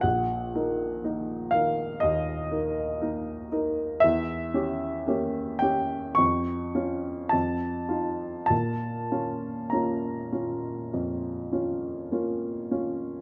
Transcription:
\new Staff \with { instrumentName = "Upright piano" } { \time 4/4 \key ees \dorian \tempo 4 = 54 << { ges''4. f''8 ees''2 | e''4. g''8 des'''4 a''4 | a''4 bes''2 r4 | } \\ { bes,,8 <ees' bes'>8 <bes ees' bes'>8 <ees' bes'>8 ees,8 <ees' bes'>8 <bes ees' bes'>8 <ees' bes'>8 | e,8 <cis' g'>8 <bes cis' g'>8 <cis' g'>8 f,8 <des' f'>8 f,8 <ees' f'>8 | bes,8 <des' f'>8 <bes des' f'>8 <des' f'>8 f,8 <des' f'>8 <bes des' f'>8 <des' f'>8 | } >> }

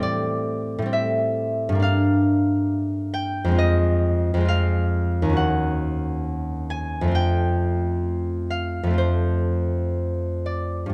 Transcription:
<<
  \new Staff \with { instrumentName = "Harp" } { \time 4/4 \key f \major \tempo 4 = 67 <d'' e'' g'' a''>4 e''4 f''4. g''8 | ees''4 f''4 ges''4. gis''8 | g''4. f''8 c''4. d''8 | }
  \new Staff \with { instrumentName = "Harp" } { \time 4/4 \key f \major <a, g c'>4 <a, g c'>4 <g, g bes d'>2 | <f, aes c' f'>4 <f, aes c' f'>4 <ees, bes des' ges'>2 | <f, a c' f'>2 <f, a c' f'>2 | }
>>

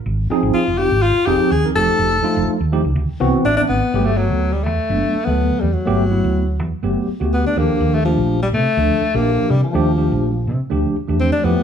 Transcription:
<<
  \new Staff \with { instrumentName = "Tine electric piano" } { \time 4/4 \key d \phrygian \tempo 4 = 124 << { r1 | r2. e''8 fis''8 | \key g \major r1 | r1 |
r1 | r1 | } \\ { r8 <f c' ees' aes'>8. r16 <f c' ees' f'>16 <ees' f'>16 r8 <f c' ees' aes'>8 r16 <f c' ees' bes'>16 <f a ees' g'>8~ | <f a ees' g'>16 r16 <f a ees' f'>8. r16 <f a ees' g'>16 <ees' g'>16 r8 <e b c' fis'>8 r16 <e b c' d'>16 <c' fis'>16 r16 | <fis a b g'>16 r16 <a b fis' a'>8. r16 <b g'>16 r16 <fis a b d'>8 r16 <fis a b a'>8. r8 | <fis a b g'>16 r16 <fis a b e'>8. r16 <b g'>16 r16 <fis a b g'>8 r16 <a b fis' g'>8. <f d' g' a'>8~ |
<f d' g' a'>16 r16 <f a d' g'>8. r16 <d' bes'>16 r16 <f a d' a'>8 r16 <f d' g' a'>8. r8 | <f a d' g'>16 r16 <f a d' g'>8. r16 <d' g'>16 r16 <f a d' g'>8 r16 <f a d' g'>8. <f a e' g'>8 | } >> }
  \new Staff \with { instrumentName = "Alto saxophone" } { \time 4/4 \key d \phrygian r4 f'8 g'8 f'8 g'8 aes'16 r16 a'8~ | a'4. r4. d'16 d'16 b8~ | \key g \major b16 a16 fis8. g16 a4~ a16 b8. g16 fis16~ | fis4.~ fis16 r4 r16 b16 d'16 bes8~ |
bes16 a16 f8. g16 a4~ a16 bes8. g16 f16~ | f4.~ f16 r4 r16 c'16 d'16 b8 | }
  \new Staff \with { instrumentName = "Fingered electric bass" } { \clef bass \time 4/4 \key d \phrygian aes,,8 r16 aes,,16 r16 f,,8 aes,,8 r16 f,,16 r16 ees,16 r16 f,,16 r16 | f,,8 r16 f,,16 r16 ees,8 des,16 d,16 r16 c,16 r16 a,,16 r16 aes,,16 r16 | \key g \major g,,8. d,8. e,16 r16 fis,,16 r8 d,8 r16 e,16 r16 | g,,8. d,8. e,16 r16 fis,,16 r8 d,8 r16 ees,16 r16 |
ees,8. bes,,8. c16 r16 d,16 r8 bes,,8 r16 c16 r16 | ees,8. bes,,8. c16 r16 d,16 r8 e,8 r16 f,16 r16 | }
>>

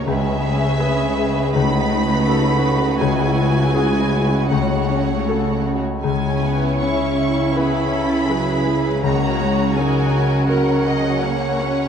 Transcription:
<<
  \new Staff \with { instrumentName = "Violin section" } { \time 4/4 \key cis \minor \tempo 4 = 82 e''2 b''2 | gis''2 fis''4. r8 | gis''4 cis'''4 b''2 | ais''4 gis''4 fis''2 | }
  \new Staff \with { instrumentName = "Violin section" } { \time 4/4 \key cis \minor << { b'1~ | b'2 cis''4.~ cis''16 r16 | cis''2 gis'8 a'8 b'4 | cis''4 ais'4 ais'8 dis''8 cis''4 | } \\ { gis'2 fis'2~ | fis'2.~ fis'8. r16 | e'2. gis'4 | fis'4 fis'4 ais'2 | } >> }
  \new Staff \with { instrumentName = "Grand piano" } { \time 4/4 \key cis \minor cis,4 <gis' b'>4 cis,4 <fis' a'>4 | cis,4 <fis' gis'>4 cis,4 <fis' a'>4 | cis,4 cis'4 <e' b'>2 | cis,4 cis'4 <fis' ais'>2 | }
  \new Staff \with { instrumentName = "Harp" } { \time 4/4 \key cis \minor <cis cis'>8 cis'8 b'8 gis'8 cis8 dis'8 a'8 fis'8 | cis8 e'8 gis'8 fis'8 cis8 cis'8 a'8 fis'8 | cis8 cis'8 gis''8 e'8 b8 cis'8 gis'8 e'8 | cis8 cis'8 ais'8 fis'8 ais8 cis'8 ais'8 fis'8 | }
  \new Staff \with { instrumentName = "Viola section" } { \time 4/4 \key cis \minor << { cis'2 dis'2 | e'2 cis'4.~ cis'16 r16 | cis'4 e'8 e'2~ e'8 | cis'4 dis'8 cis'8 cis'2 | } \\ { gis2 a2 | gis2 a4.~ a16 r16 | gis8 b8 cis'2 fis8 gis8 | ais8 gis8 fis2 ais8 cis'8 | } >> }
  \new Staff \with { instrumentName = "Cello section" } { \clef bass \time 4/4 \key cis \minor cis1~ | cis2.~ cis8. r16 | cis1~ | cis1 | }
>>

